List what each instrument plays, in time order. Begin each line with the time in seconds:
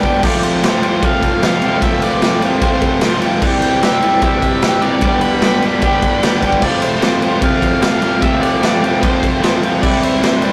0.02 overdriven electric guitar B3 D4 G4, kick
0.08 overdriven electric guitar G3
0.22 overdriven electric guitar F2 C3 F3 A3 C4, lead electric guitar D5, kick, crash
0.27 overdriven electric guitar F4
0.43 lead electric guitar C5, ride
0.62 overdriven electric guitar F2 C3 F3 A3 C4, snare, ride
0.66 overdriven electric guitar F4
0.81 overdriven electric guitar F2 C3 F3 A3 C4, ride
0.85 overdriven electric guitar F4
1.02 overdriven electric guitar F2 C3 F3 A3 C4, lead electric guitar F5, kick, ride
1.06 overdriven electric guitar F4
1.23 kick, ride
1.42 overdriven electric guitar F2 C3 F3 A3 C4 F4, lead electric guitar F5, snare, ride
1.62 overdriven electric guitar F2 C3 F3 A3 C4, ride
1.66 overdriven electric guitar F4
1.82 overdriven electric guitar F2 C3 F3 A3 C4, lead electric guitar E5, kick, ride
1.86 overdriven electric guitar F4
2.02 lead electric guitar D5, ride
2.22 overdriven electric guitar F2 C3 F3 A3 C4, snare, ride
2.26 overdriven electric guitar F4
2.42 overdriven electric guitar F2 C3 F3 A3 C4 F4, ride
2.61 overdriven electric guitar F2 C3 F3 A3, lead electric guitar C5, kick, ride
2.65 overdriven electric guitar C4 F4
2.82 kick, ride
3.01 overdriven electric guitar F2 C3 F3 A3 C4, snare, ride
3.06 overdriven electric guitar F4
3.22 overdriven electric guitar F2 C3 F3 A3 C4, ride
3.26 overdriven electric guitar F4
3.42 overdriven electric guitar C3 E3 G3 C4 G4, kick, crash
3.62 lead electric guitar G5, ride
3.71 lead electric guitar G5
3.82 overdriven electric guitar C3 E3 G3 C4 G4, lead electric guitar E5, snare, ride
4.02 overdriven electric guitar C3 E3 G3 C4 G4, ride
4.22 overdriven electric guitar C3 E3 G3 C4, lead electric guitar E5, kick, ride
4.26 overdriven electric guitar G4
4.42 kick, ride
4.62 overdriven electric guitar C3 E3 G3 C4, snare, ride
4.66 overdriven electric guitar G4
4.82 overdriven electric guitar C3 E3 G3 C4 G4, lead electric guitar D5, ride
5.01 overdriven electric guitar G2 D3 G3 B3, kick, ride
5.05 overdriven electric guitar D4 G4
5.21 lead electric guitar B5, ride
5.41 overdriven electric guitar G2 D3 G3 B3 D4, snare, ride
5.46 overdriven electric guitar G4
5.62 overdriven electric guitar G2 D3 G3 B3 D4, ride
5.66 overdriven electric guitar G4
5.81 overdriven electric guitar G2 D3 G3 B3 D4 G4, kick, ride
6.02 kick, ride
6.21 overdriven electric guitar G2 D3 G3 B3 D4 G4, snare, ride
6.42 overdriven electric guitar G2 D3 G3 B3 D4 G4, kick, ride
6.52 kick
6.61 overdriven electric guitar F2 C3 F3 A3 C4, lead electric guitar D5, kick, crash
6.65 overdriven electric guitar F4
6.82 lead electric guitar C5, ride
7.01 overdriven electric guitar F2 C3 F3 A3 C4, snare, ride
7.06 overdriven electric guitar F4
7.20 overdriven electric guitar F2 C3 F3 A3 C4, ride
7.24 overdriven electric guitar F4
7.41 overdriven electric guitar F2 C3 F3 A3 C4, lead electric guitar F5, kick, ride
7.46 overdriven electric guitar F4
7.62 kick, ride
7.80 overdriven electric guitar F2 C3 F3 A3 C4, lead electric guitar F5, snare, ride
7.85 overdriven electric guitar F4
8.00 overdriven electric guitar F2 C3 F3 A3 C4 F4, ride
8.20 overdriven electric guitar F2 C3 F3 A3 C4, lead electric guitar E5, kick, ride
8.25 overdriven electric guitar F4
8.41 lead electric guitar D5, ride
8.62 overdriven electric guitar F2 C3 F3 A3 C4, snare, ride
8.66 overdriven electric guitar F4
8.82 overdriven electric guitar F2 C3 F3 A3 C4, ride
8.86 overdriven electric guitar F4
9.00 overdriven electric guitar F2 C3 F3 A3 C4 F4, lead electric guitar C5, kick, ride
9.23 kick, ride
9.41 overdriven electric guitar F2 C3 F3 A3 C4, snare, ride
9.45 overdriven electric guitar F4
9.61 overdriven electric guitar F2 C3 F3 A3 C4, ride
9.66 overdriven electric guitar F4
9.81 overdriven electric guitar C3 E3 G3 C4 E4, lead electric guitar D5, kick, crash
10.03 lead electric guitar C5, ride
10.22 overdriven electric guitar C3 E3 G3 C4 E4, snare, ride
10.41 overdriven electric guitar C3 E3 G3 C4 E4, ride